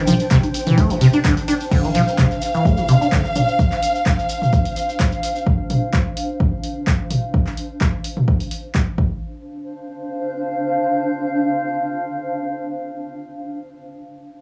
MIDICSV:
0, 0, Header, 1, 6, 480
1, 0, Start_track
1, 0, Key_signature, -1, "minor"
1, 0, Tempo, 468750
1, 1756, Time_signature, 4, 2, 24, 8
1, 14761, End_track
2, 0, Start_track
2, 0, Title_t, "String section"
2, 0, Program_c, 0, 48
2, 1757, Note_on_c, 0, 77, 88
2, 5607, Note_off_c, 0, 77, 0
2, 14761, End_track
3, 0, Start_track
3, 0, Title_t, "Ambient pad"
3, 0, Program_c, 1, 92
3, 0, Note_on_c, 1, 62, 77
3, 0, Note_on_c, 1, 72, 100
3, 0, Note_on_c, 1, 79, 87
3, 1992, Note_on_c, 1, 77, 75
3, 2449, Note_off_c, 1, 79, 0
3, 7516, Note_off_c, 1, 72, 0
3, 7517, Note_off_c, 1, 62, 0
3, 7517, Note_off_c, 1, 77, 0
3, 9195, Note_on_c, 1, 62, 76
3, 9273, Note_on_c, 1, 72, 75
3, 9585, Note_on_c, 1, 77, 77
3, 14054, Note_off_c, 1, 62, 0
3, 14054, Note_off_c, 1, 77, 0
3, 14055, Note_off_c, 1, 72, 0
3, 14761, End_track
4, 0, Start_track
4, 0, Title_t, "Acid bass"
4, 0, Program_c, 2, 38
4, 76, Note_on_c, 2, 53, 103
4, 147, Note_off_c, 2, 53, 0
4, 316, Note_on_c, 2, 48, 105
4, 386, Note_off_c, 2, 48, 0
4, 684, Note_on_c, 2, 52, 78
4, 796, Note_on_c, 2, 57, 101
4, 811, Note_off_c, 2, 52, 0
4, 924, Note_on_c, 2, 52, 78
4, 939, Note_off_c, 2, 57, 0
4, 985, Note_off_c, 2, 52, 0
4, 1035, Note_on_c, 2, 48, 102
4, 1106, Note_off_c, 2, 48, 0
4, 1164, Note_on_c, 2, 62, 81
4, 1226, Note_off_c, 2, 62, 0
4, 1277, Note_on_c, 2, 50, 86
4, 1382, Note_off_c, 2, 50, 0
4, 1516, Note_on_c, 2, 62, 78
4, 1587, Note_off_c, 2, 62, 0
4, 1757, Note_on_c, 2, 50, 79
4, 1885, Note_on_c, 2, 52, 79
4, 1900, Note_off_c, 2, 50, 0
4, 1946, Note_off_c, 2, 52, 0
4, 1997, Note_on_c, 2, 53, 102
4, 2067, Note_off_c, 2, 53, 0
4, 2237, Note_on_c, 2, 48, 101
4, 2307, Note_off_c, 2, 48, 0
4, 2605, Note_on_c, 2, 52, 78
4, 2717, Note_on_c, 2, 57, 100
4, 2732, Note_off_c, 2, 52, 0
4, 2845, Note_on_c, 2, 52, 76
4, 2860, Note_off_c, 2, 57, 0
4, 2906, Note_off_c, 2, 52, 0
4, 2957, Note_on_c, 2, 48, 100
4, 3027, Note_off_c, 2, 48, 0
4, 3085, Note_on_c, 2, 62, 75
4, 3146, Note_off_c, 2, 62, 0
4, 3196, Note_on_c, 2, 50, 85
4, 3302, Note_off_c, 2, 50, 0
4, 3437, Note_on_c, 2, 62, 76
4, 3507, Note_off_c, 2, 62, 0
4, 14761, End_track
5, 0, Start_track
5, 0, Title_t, "Shekere"
5, 70, Note_on_c, 9, 82, 88
5, 173, Note_off_c, 9, 82, 0
5, 203, Note_on_c, 9, 82, 36
5, 306, Note_off_c, 9, 82, 0
5, 319, Note_on_c, 9, 82, 55
5, 421, Note_off_c, 9, 82, 0
5, 443, Note_on_c, 9, 82, 33
5, 545, Note_off_c, 9, 82, 0
5, 559, Note_on_c, 9, 82, 96
5, 662, Note_off_c, 9, 82, 0
5, 684, Note_on_c, 9, 82, 37
5, 786, Note_off_c, 9, 82, 0
5, 798, Note_on_c, 9, 82, 47
5, 900, Note_off_c, 9, 82, 0
5, 928, Note_on_c, 9, 82, 33
5, 1030, Note_off_c, 9, 82, 0
5, 1040, Note_on_c, 9, 82, 82
5, 1142, Note_off_c, 9, 82, 0
5, 1159, Note_on_c, 9, 82, 41
5, 1261, Note_off_c, 9, 82, 0
5, 1286, Note_on_c, 9, 82, 50
5, 1388, Note_off_c, 9, 82, 0
5, 1412, Note_on_c, 9, 82, 37
5, 1515, Note_off_c, 9, 82, 0
5, 1528, Note_on_c, 9, 82, 95
5, 1630, Note_off_c, 9, 82, 0
5, 1647, Note_on_c, 9, 82, 36
5, 1749, Note_off_c, 9, 82, 0
5, 1757, Note_on_c, 9, 82, 48
5, 1860, Note_off_c, 9, 82, 0
5, 1887, Note_on_c, 9, 82, 37
5, 1989, Note_off_c, 9, 82, 0
5, 1996, Note_on_c, 9, 82, 97
5, 2098, Note_off_c, 9, 82, 0
5, 2129, Note_on_c, 9, 82, 43
5, 2230, Note_off_c, 9, 82, 0
5, 2230, Note_on_c, 9, 82, 47
5, 2333, Note_off_c, 9, 82, 0
5, 2365, Note_on_c, 9, 82, 37
5, 2467, Note_off_c, 9, 82, 0
5, 2474, Note_on_c, 9, 82, 82
5, 2577, Note_off_c, 9, 82, 0
5, 2603, Note_on_c, 9, 82, 36
5, 2706, Note_off_c, 9, 82, 0
5, 2717, Note_on_c, 9, 82, 49
5, 2819, Note_off_c, 9, 82, 0
5, 2838, Note_on_c, 9, 82, 37
5, 2941, Note_off_c, 9, 82, 0
5, 2952, Note_on_c, 9, 82, 96
5, 3055, Note_off_c, 9, 82, 0
5, 3089, Note_on_c, 9, 82, 35
5, 3192, Note_off_c, 9, 82, 0
5, 3194, Note_on_c, 9, 82, 53
5, 3296, Note_off_c, 9, 82, 0
5, 3324, Note_on_c, 9, 82, 39
5, 3426, Note_off_c, 9, 82, 0
5, 3436, Note_on_c, 9, 82, 90
5, 3539, Note_off_c, 9, 82, 0
5, 3565, Note_on_c, 9, 82, 36
5, 3667, Note_off_c, 9, 82, 0
5, 3677, Note_on_c, 9, 82, 49
5, 3779, Note_off_c, 9, 82, 0
5, 3805, Note_on_c, 9, 82, 37
5, 3907, Note_off_c, 9, 82, 0
5, 3923, Note_on_c, 9, 82, 92
5, 4025, Note_off_c, 9, 82, 0
5, 4045, Note_on_c, 9, 82, 38
5, 4147, Note_off_c, 9, 82, 0
5, 4157, Note_on_c, 9, 82, 53
5, 4260, Note_off_c, 9, 82, 0
5, 4292, Note_on_c, 9, 82, 36
5, 4394, Note_off_c, 9, 82, 0
5, 4395, Note_on_c, 9, 82, 86
5, 4497, Note_off_c, 9, 82, 0
5, 4537, Note_on_c, 9, 82, 36
5, 4636, Note_off_c, 9, 82, 0
5, 4636, Note_on_c, 9, 82, 57
5, 4738, Note_off_c, 9, 82, 0
5, 4764, Note_on_c, 9, 82, 35
5, 4867, Note_off_c, 9, 82, 0
5, 4882, Note_on_c, 9, 82, 82
5, 4985, Note_off_c, 9, 82, 0
5, 5010, Note_on_c, 9, 82, 38
5, 5112, Note_off_c, 9, 82, 0
5, 5117, Note_on_c, 9, 82, 54
5, 5219, Note_off_c, 9, 82, 0
5, 5242, Note_on_c, 9, 82, 36
5, 5345, Note_off_c, 9, 82, 0
5, 5365, Note_on_c, 9, 82, 89
5, 5467, Note_off_c, 9, 82, 0
5, 5485, Note_on_c, 9, 82, 38
5, 5587, Note_off_c, 9, 82, 0
5, 14761, End_track
6, 0, Start_track
6, 0, Title_t, "Drums"
6, 75, Note_on_c, 9, 46, 108
6, 75, Note_on_c, 9, 47, 83
6, 75, Note_on_c, 9, 51, 85
6, 75, Note_on_c, 9, 63, 62
6, 178, Note_off_c, 9, 46, 0
6, 178, Note_off_c, 9, 47, 0
6, 178, Note_off_c, 9, 51, 0
6, 178, Note_off_c, 9, 63, 0
6, 204, Note_on_c, 9, 42, 41
6, 306, Note_off_c, 9, 42, 0
6, 315, Note_on_c, 9, 36, 117
6, 315, Note_on_c, 9, 42, 86
6, 315, Note_on_c, 9, 51, 60
6, 316, Note_on_c, 9, 39, 127
6, 418, Note_off_c, 9, 36, 0
6, 418, Note_off_c, 9, 42, 0
6, 418, Note_off_c, 9, 51, 0
6, 419, Note_off_c, 9, 39, 0
6, 444, Note_on_c, 9, 42, 56
6, 444, Note_on_c, 9, 63, 58
6, 546, Note_off_c, 9, 42, 0
6, 546, Note_off_c, 9, 63, 0
6, 556, Note_on_c, 9, 46, 105
6, 556, Note_on_c, 9, 51, 84
6, 658, Note_off_c, 9, 46, 0
6, 658, Note_off_c, 9, 51, 0
6, 684, Note_on_c, 9, 42, 41
6, 684, Note_on_c, 9, 47, 80
6, 786, Note_off_c, 9, 42, 0
6, 786, Note_off_c, 9, 47, 0
6, 796, Note_on_c, 9, 36, 118
6, 796, Note_on_c, 9, 42, 84
6, 796, Note_on_c, 9, 51, 57
6, 796, Note_on_c, 9, 63, 59
6, 898, Note_off_c, 9, 36, 0
6, 898, Note_off_c, 9, 42, 0
6, 898, Note_off_c, 9, 51, 0
6, 898, Note_off_c, 9, 63, 0
6, 924, Note_on_c, 9, 46, 60
6, 1026, Note_off_c, 9, 46, 0
6, 1036, Note_on_c, 9, 46, 105
6, 1036, Note_on_c, 9, 51, 82
6, 1138, Note_off_c, 9, 46, 0
6, 1138, Note_off_c, 9, 51, 0
6, 1164, Note_on_c, 9, 42, 38
6, 1164, Note_on_c, 9, 63, 60
6, 1267, Note_off_c, 9, 42, 0
6, 1267, Note_off_c, 9, 63, 0
6, 1276, Note_on_c, 9, 36, 118
6, 1276, Note_on_c, 9, 42, 87
6, 1276, Note_on_c, 9, 51, 61
6, 1277, Note_on_c, 9, 39, 127
6, 1378, Note_off_c, 9, 36, 0
6, 1379, Note_off_c, 9, 42, 0
6, 1379, Note_off_c, 9, 51, 0
6, 1380, Note_off_c, 9, 39, 0
6, 1405, Note_on_c, 9, 42, 58
6, 1507, Note_off_c, 9, 42, 0
6, 1516, Note_on_c, 9, 46, 105
6, 1516, Note_on_c, 9, 51, 85
6, 1516, Note_on_c, 9, 63, 59
6, 1619, Note_off_c, 9, 46, 0
6, 1619, Note_off_c, 9, 51, 0
6, 1619, Note_off_c, 9, 63, 0
6, 1645, Note_on_c, 9, 42, 40
6, 1747, Note_off_c, 9, 42, 0
6, 1756, Note_on_c, 9, 36, 121
6, 1757, Note_on_c, 9, 49, 93
6, 1859, Note_off_c, 9, 36, 0
6, 1859, Note_off_c, 9, 49, 0
6, 1996, Note_on_c, 9, 46, 107
6, 1996, Note_on_c, 9, 47, 83
6, 2098, Note_off_c, 9, 46, 0
6, 2098, Note_off_c, 9, 47, 0
6, 2236, Note_on_c, 9, 36, 112
6, 2237, Note_on_c, 9, 39, 125
6, 2339, Note_off_c, 9, 36, 0
6, 2340, Note_off_c, 9, 39, 0
6, 2476, Note_on_c, 9, 46, 105
6, 2579, Note_off_c, 9, 46, 0
6, 2716, Note_on_c, 9, 36, 118
6, 2819, Note_off_c, 9, 36, 0
6, 2957, Note_on_c, 9, 46, 104
6, 3060, Note_off_c, 9, 46, 0
6, 3197, Note_on_c, 9, 36, 119
6, 3198, Note_on_c, 9, 39, 126
6, 3299, Note_off_c, 9, 36, 0
6, 3300, Note_off_c, 9, 39, 0
6, 3438, Note_on_c, 9, 46, 107
6, 3438, Note_on_c, 9, 47, 81
6, 3540, Note_off_c, 9, 46, 0
6, 3540, Note_off_c, 9, 47, 0
6, 3677, Note_on_c, 9, 36, 117
6, 3779, Note_off_c, 9, 36, 0
6, 3807, Note_on_c, 9, 39, 38
6, 3909, Note_off_c, 9, 39, 0
6, 3917, Note_on_c, 9, 46, 108
6, 4020, Note_off_c, 9, 46, 0
6, 4157, Note_on_c, 9, 36, 116
6, 4158, Note_on_c, 9, 39, 121
6, 4259, Note_off_c, 9, 36, 0
6, 4260, Note_off_c, 9, 39, 0
6, 4398, Note_on_c, 9, 46, 111
6, 4500, Note_off_c, 9, 46, 0
6, 4525, Note_on_c, 9, 47, 82
6, 4628, Note_off_c, 9, 47, 0
6, 4637, Note_on_c, 9, 36, 117
6, 4740, Note_off_c, 9, 36, 0
6, 4766, Note_on_c, 9, 46, 62
6, 4868, Note_off_c, 9, 46, 0
6, 4877, Note_on_c, 9, 46, 103
6, 4979, Note_off_c, 9, 46, 0
6, 5117, Note_on_c, 9, 36, 118
6, 5118, Note_on_c, 9, 39, 125
6, 5219, Note_off_c, 9, 36, 0
6, 5220, Note_off_c, 9, 39, 0
6, 5357, Note_on_c, 9, 46, 107
6, 5460, Note_off_c, 9, 46, 0
6, 5597, Note_on_c, 9, 36, 117
6, 5699, Note_off_c, 9, 36, 0
6, 5837, Note_on_c, 9, 46, 107
6, 5837, Note_on_c, 9, 47, 85
6, 5940, Note_off_c, 9, 46, 0
6, 5940, Note_off_c, 9, 47, 0
6, 6077, Note_on_c, 9, 36, 119
6, 6078, Note_on_c, 9, 39, 118
6, 6179, Note_off_c, 9, 36, 0
6, 6180, Note_off_c, 9, 39, 0
6, 6317, Note_on_c, 9, 46, 109
6, 6420, Note_off_c, 9, 46, 0
6, 6557, Note_on_c, 9, 36, 119
6, 6659, Note_off_c, 9, 36, 0
6, 6797, Note_on_c, 9, 46, 105
6, 6899, Note_off_c, 9, 46, 0
6, 7037, Note_on_c, 9, 36, 121
6, 7038, Note_on_c, 9, 39, 121
6, 7139, Note_off_c, 9, 36, 0
6, 7140, Note_off_c, 9, 39, 0
6, 7277, Note_on_c, 9, 46, 109
6, 7277, Note_on_c, 9, 47, 84
6, 7379, Note_off_c, 9, 46, 0
6, 7379, Note_off_c, 9, 47, 0
6, 7517, Note_on_c, 9, 36, 114
6, 7619, Note_off_c, 9, 36, 0
6, 7646, Note_on_c, 9, 39, 36
6, 7748, Note_off_c, 9, 39, 0
6, 7756, Note_on_c, 9, 46, 105
6, 7859, Note_off_c, 9, 46, 0
6, 7996, Note_on_c, 9, 36, 116
6, 7997, Note_on_c, 9, 39, 113
6, 8099, Note_off_c, 9, 36, 0
6, 8099, Note_off_c, 9, 39, 0
6, 8236, Note_on_c, 9, 46, 106
6, 8338, Note_off_c, 9, 46, 0
6, 8364, Note_on_c, 9, 47, 84
6, 8466, Note_off_c, 9, 47, 0
6, 8476, Note_on_c, 9, 36, 120
6, 8579, Note_off_c, 9, 36, 0
6, 8604, Note_on_c, 9, 46, 59
6, 8706, Note_off_c, 9, 46, 0
6, 8715, Note_on_c, 9, 46, 101
6, 8818, Note_off_c, 9, 46, 0
6, 8956, Note_on_c, 9, 36, 120
6, 8956, Note_on_c, 9, 39, 112
6, 9058, Note_off_c, 9, 39, 0
6, 9059, Note_off_c, 9, 36, 0
6, 9196, Note_on_c, 9, 36, 105
6, 9298, Note_off_c, 9, 36, 0
6, 14761, End_track
0, 0, End_of_file